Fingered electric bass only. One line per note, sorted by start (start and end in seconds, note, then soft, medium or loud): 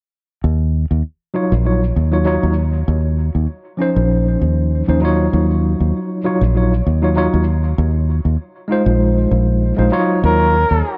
0.44 0.84 D#2 medium
0.91 1.01 D#2 medium
1.52 1.91 A#1 medium
1.96 2.37 D#2 medium
2.43 2.82 D#2 medium
2.88 3.28 D#2 medium
3.35 3.46 D#2 medium
3.96 4.35 A#1 medium
4.41 4.82 D#2 medium
4.89 5.27 D#2 medium
5.33 5.74 D#2 medium
5.80 5.91 D#2 medium
6.41 6.80 A#1 medium
6.86 7.27 D#2 medium
7.34 7.72 D#2 medium
7.78 8.19 D#2 medium
8.25 8.36 D#2 medium
8.86 9.25 A#1 medium
9.31 9.72 A#1 medium
9.78 9.89 A#1 medium
10.24 10.64 D#2 medium
10.71 10.81 D#2 medium